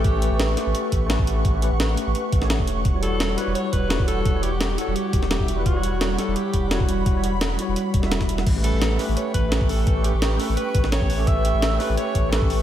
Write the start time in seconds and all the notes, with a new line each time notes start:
Already playing: A3 C#4 G4 A4 B4 C#6
0.04 A1 G4 F#5, kick, closed hi-hat
0.12 A3 C#4 G4 B4
0.20 A3 C#4 G4 B4, closed hi-hat
0.31 A1
0.40 snare, closed hi-hat
0.54 A3 C#4, snare, closed hi-hat
0.58 G4 B4
0.66 A1
0.75 closed hi-hat
0.92 A1, kick, closed hi-hat
1.06 A3 C#4, snare, closed hi-hat
1.11 G4 B4
1.19 A1, kick
1.27 closed hi-hat
1.45 A1, kick, closed hi-hat
1.52 A3 C#4 G4 B4
1.61 A3 C#4 G4 B4, closed hi-hat
1.72 A1
1.80 snare, closed hi-hat
1.94 A3 C#4, closed hi-hat
1.98 G4 B4
2.07 A1
2.15 closed hi-hat
2.32 A1, kick, closed hi-hat
2.38 A3 C#4, snare
2.43 G4 C#5
2.50 snare, closed hi-hat
2.59 E1, kick
2.68 closed hi-hat
2.85 E1 G3, kick, closed hi-hat
2.93 G3 E4 F#4 C#5
3.01 G3 E4 F#4 A4 C#5, closed hi-hat
3.12 E1
3.20 snare, closed hi-hat
3.34 G3 E4 B4, snare, closed hi-hat
3.39 F#4 C#5
3.47 E1
3.55 C#5, closed hi-hat
3.73 E1 B4, kick, closed hi-hat
3.87 G3 E4, snare, closed hi-hat
3.91 F#4 C#5
3.99 E1, kick
4.08 A4, closed hi-hat
4.25 E1, kick, closed hi-hat
4.33 G3 E4 F#4 C#5
4.41 G3 E4 F#4 G4 C#5, closed hi-hat
4.52 E1
4.61 snare, closed hi-hat
4.75 G3 E4 A4, closed hi-hat
4.79 F#4 C#5
4.87 E1
4.96 G4, closed hi-hat
5.13 E1, kick, closed hi-hat
5.23 snare
5.31 G4, snare, closed hi-hat
5.38 E1 G3 E4 F#4 E5, kick
5.48 closed hi-hat
5.56 G3 E4 F#4 B4
5.66 E1 F#4 B5, kick, closed hi-hat
5.73 G3 E4 F#4 C#5
5.82 G3 E4 F#4 C#5, closed hi-hat
5.92 E1
6.01 snare, closed hi-hat
6.15 G3 E4 A4, snare, closed hi-hat
6.20 C#5 F#5
6.28 E1
6.36 G4, closed hi-hat
6.53 E1, kick, closed hi-hat
6.68 G3 E4 F#4, snare, closed hi-hat
6.72 F#4 C#5
6.80 E1, kick
6.89 closed hi-hat
7.06 E1, kick, closed hi-hat
7.14 G3 E4 F#4 C#5
7.22 G3 E4 F#4 C#5, closed hi-hat
7.33 E1
7.41 snare, closed hi-hat
7.55 G3 E4, closed hi-hat
7.60 F#4 C#5
7.68 E1
7.76 closed hi-hat
7.94 E1, kick, closed hi-hat
8.00 G3 E4, snare
8.04 F#4 E5
8.12 snare, closed hi-hat
8.21 E1, kick, snare
8.29 closed hi-hat
8.38 snare
8.46 A1 B4 G5 C#6, kick, closed hi-hat, crash
8.54 A3 C#4 G4 B4
8.62 A3 C#4 G4 A4 B4, closed hi-hat
8.73 A1
8.82 snare, closed hi-hat
8.96 A3 C#4 B4, snare, open hi-hat
9.00 G4 B4
9.08 A1
9.17 C#5, closed hi-hat
9.34 A1 B4, kick, closed hi-hat
9.49 A3 C#4, snare, closed hi-hat
9.53 G4 B4
9.61 A1, kick
9.69 A4, open hi-hat
9.87 A1, kick, closed hi-hat
9.94 A3 C#4 G4 B4
10.03 A3 C#4 G4 B4, closed hi-hat
10.14 A1
10.22 snare, closed hi-hat
10.36 A3 C#4 A4, open hi-hat
10.41 G4 B4
10.49 A1
10.57 B4, closed hi-hat
10.75 A1, kick, closed hi-hat
10.84 snare
10.92 C#5, snare, closed hi-hat
11.00 A1 A3 C#4 G4 C#5, kick
11.10 open hi-hat
11.17 A3 C#4 G4 A4
11.27 A1 E5, kick, closed hi-hat
11.35 A3 C#4 G4 B4
11.44 A3 C#4 G4 B4, closed hi-hat
11.54 A1
11.62 snare, closed hi-hat
11.77 A3 C#4 B4, snare, open hi-hat
11.81 G4 B4
11.89 A1
11.97 C#5, closed hi-hat
12.15 A1, kick, closed hi-hat
12.29 A3 C#4 A4, snare, closed hi-hat
12.34 G4 B4
12.42 A1, kick
12.50 open hi-hat